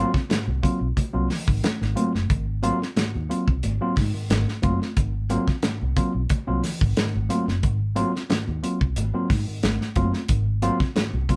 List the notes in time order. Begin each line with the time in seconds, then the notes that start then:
Already playing: F#3 A#3 C4 F4
0.14 C4 F4, kick, snare
0.29 G#2 D#3, snare, closed hi-hat, high conga
0.47 C2
0.63 F#3 A#3 C4 F4, kick, closed hi-hat
0.80 B1 C4 F4
0.97 kick, closed hi-hat, muted conga
1.13 C2 F#3 A#3 C4 F4
1.30 snare, open hi-hat, muted conga, low conga
1.48 G#1 G#2 D#3, kick
1.63 C4 F4, snare, closed hi-hat, high conga
1.81 G#1 G#2 D#3, snare
1.95 F#3 A#3 C4 F4, closed hi-hat, high conga
2.15 F#1, snare
2.29 G#1 G#2 D#3, kick, closed hi-hat
2.63 F#3 A#3 C4 F4, closed hi-hat, muted conga
2.81 C4 F4, snare
2.96 G#2 D#3, snare, closed hi-hat, high conga
3.15 D#2
3.29 F#3 A#3 C4 F4, closed hi-hat
3.47 C2 C4 F4, kick
3.63 G#1, closed hi-hat, muted conga
3.81 F#3 A#3 C4 F4
3.96 G#2, kick, snare, open hi-hat, muted conga
4.14 G#2 D#3
4.30 G#1 G#2 D#3, snare, closed hi-hat, high conga
4.48 snare
4.62 F#1 F#3 A#3 C4 F4, kick, closed hi-hat, high conga
4.82 C4 F4, snare
4.96 G#1 G#2 D#3, kick, closed hi-hat
5.30 F#3 A#3 C4 F4, closed hi-hat, muted conga
5.48 C4 F4, kick, snare
5.63 G#2 D#3, snare, closed hi-hat, high conga
5.82 C2
5.96 F#3 A#3 C4 F4, kick, closed hi-hat
6.14 B1 C4 F4
6.29 muted fingered electric bass stroke, kick, closed hi-hat, muted conga
6.47 C2 F#3 A#3 C4 F4
6.63 snare, open hi-hat, muted conga, low conga
6.81 G#1 G#2 D#3, kick
6.97 G#2 D#3, snare, closed hi-hat, high conga
7.15 G#1
7.29 F#3 A#3 C4 F4, closed hi-hat, high conga
7.48 F#1 C4 F4, snare
7.63 G#1 G#2 D#3, kick, closed hi-hat
7.96 F#3 A#3 C4 F4, closed hi-hat, muted conga
8.14 C4 F4, snare
8.30 G#2 D#3, snare, closed hi-hat, high conga
8.48 D#2
8.63 F#3 A#3 C4 F4, closed hi-hat
8.81 C2 C4 F4, kick
8.96 G#1, closed hi-hat, muted conga
9.14 F#3 A#3 C4 F4
9.30 G#2, kick, snare, open hi-hat, muted conga
9.47 G#2 D#3
9.63 G#1 G#2 D#3, snare, closed hi-hat, high conga
9.81 snare
9.96 F#1 F#3 A#3 C4 F4, kick, closed hi-hat, high conga
10.14 C4 F4, snare
10.28 G#1 G#2 D#3, kick, closed hi-hat
10.62 F#3 A#3 C4 F4, closed hi-hat, muted conga
10.80 C4 F4, kick, snare
10.96 G#2 D#3, snare, closed hi-hat, high conga
11.13 C2
11.29 F#3 A#3 C4 F4, kick, closed hi-hat